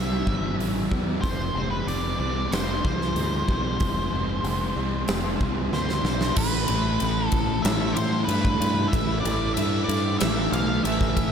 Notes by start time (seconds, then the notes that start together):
Already playing: C2 C3 G3 C4 E5
0.27 G1 E3, kick
0.58 A1 G3, open hi-hat
0.92 E2 C4, kick
1.22 F1 F2 C5, kick, open hi-hat
1.54 F1 G#3
1.70 B4
1.87 F1 C4 D5, open hi-hat
2.19 C2 G#3 D5
2.51 F1 C4 C5, snare, open hi-hat
2.84 C2 F3, kick
3.01 snare
3.15 D2 G#3, open hi-hat
3.48 B1 C4, kick
3.80 F1 F2, kick, open hi-hat
4.12 F1 G#3
4.43 F1 C4, open hi-hat
4.76 C2 G#3
5.08 F1 C4, snare, open hi-hat
5.40 C2 F3, kick
5.72 D2 G#3 C5, snare
5.89 snare
6.04 B1 C4, snare
6.21 snare
6.36 A1 A2 E3 A3 B4, kick, crash
6.68 A1 E3 A3, ride
7.00 A1 A2 E3 A3, ride
7.27 A4
7.32 A1, kick, ride
7.62 A1 A2 E5, snare, ride
7.66 E3 A3
7.93 C5, ride
7.97 A2
8.24 G2 B4
8.29 A2 E3 A3, ride
8.45 kick
8.60 G2, ride
8.88 A2 E5
8.93 A1 E3 A3, kick, ride
9.20 D5
9.24 A1 E3 A3, ride
9.54 G2 A2 E5, ride
9.59 E3 A3
9.84 D5
9.88 G2, ride
10.19 A1 A2 E3 E5, snare, ride
10.23 A3
10.52 B1 F5, ride
10.84 A1 A2 E3 A3 E5, ride
11.01 kick, snare
11.17 kick, ride